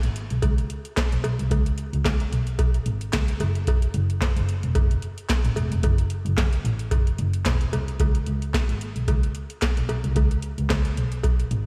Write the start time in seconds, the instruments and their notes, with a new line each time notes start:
0.03 double bass G#1, closed hi-hat
0.16 closed hi-hat
0.30 double bass B1, closed hi-hat
0.42 double bass C#2, kick, closed hi-hat, cowbell
0.58 closed hi-hat
0.70 closed hi-hat
0.85 closed hi-hat
0.97 kick, snare, clap, closed hi-hat, cowbell
1.12 double bass B1, closed hi-hat
1.24 double bass B1, closed hi-hat, cowbell
1.39 double bass C2, closed hi-hat
1.51 double bass C#2, kick, closed hi-hat, cowbell
1.66 closed hi-hat
1.78 closed hi-hat
1.93 double bass C#2, closed hi-hat
2.05 double bass C#2, kick, snare, clap, closed hi-hat, cowbell
2.20 closed hi-hat
2.32 double bass B1, closed hi-hat
2.47 closed hi-hat
2.59 double bass B1, kick, closed hi-hat, cowbell
2.74 closed hi-hat
2.86 double bass G#1, closed hi-hat
3.01 closed hi-hat
3.13 double bass C#2, kick, snare, clap, closed hi-hat, cowbell
3.28 closed hi-hat
3.40 double bass F#1, closed hi-hat, cowbell
3.55 closed hi-hat
3.67 kick, closed hi-hat, cowbell
3.82 closed hi-hat
3.94 double bass F#1, closed hi-hat
4.10 closed hi-hat
4.21 kick, snare, clap, closed hi-hat, cowbell
4.37 double bass F#1, closed hi-hat
4.49 closed hi-hat
4.63 double bass E1, closed hi-hat
4.75 double bass F#1, kick, closed hi-hat, cowbell
4.91 closed hi-hat
5.02 closed hi-hat
5.18 closed hi-hat
5.29 kick, snare, clap, closed hi-hat, cowbell
5.45 double bass A1, closed hi-hat
5.56 double bass E1, closed hi-hat, cowbell
5.72 double bass F1, closed hi-hat
5.83 double bass F#1, kick, closed hi-hat, cowbell
5.98 closed hi-hat
6.10 closed hi-hat
6.26 double bass F#1, closed hi-hat
6.37 double bass F#1, kick, snare, clap, closed hi-hat, cowbell
6.53 closed hi-hat
6.65 double bass A1, closed hi-hat
6.79 closed hi-hat
6.91 double bass F#1, kick, closed hi-hat, cowbell
7.07 closed hi-hat
7.18 double bass F#1, closed hi-hat
7.33 closed hi-hat
7.45 double bass E1, kick, snare, clap, closed hi-hat, cowbell
7.61 closed hi-hat
7.73 double bass C2, closed hi-hat, cowbell
7.88 closed hi-hat
8.00 double bass C#2, kick, closed hi-hat, cowbell
8.15 closed hi-hat
8.26 double bass C#2, closed hi-hat
8.42 closed hi-hat
8.54 kick, snare, clap, closed hi-hat, cowbell
8.69 double bass G#1, closed hi-hat
8.81 closed hi-hat
8.96 double bass B1, closed hi-hat
9.08 double bass C#2, kick, closed hi-hat, cowbell
9.23 closed hi-hat
9.35 closed hi-hat
9.50 closed hi-hat
9.61 kick, snare, clap, closed hi-hat, cowbell
9.77 double bass B1, closed hi-hat
9.89 double bass B1, closed hi-hat, cowbell
10.04 double bass C2, closed hi-hat
10.16 double bass C#2, kick, closed hi-hat, cowbell
10.31 closed hi-hat
10.42 closed hi-hat
10.58 double bass C#2, closed hi-hat
10.70 double bass C#2, kick, snare, clap, closed hi-hat, cowbell
10.85 closed hi-hat
10.97 double bass B1, closed hi-hat
11.12 closed hi-hat
11.23 double bass B1, kick, closed hi-hat, cowbell
11.40 closed hi-hat
11.51 double bass G#1, closed hi-hat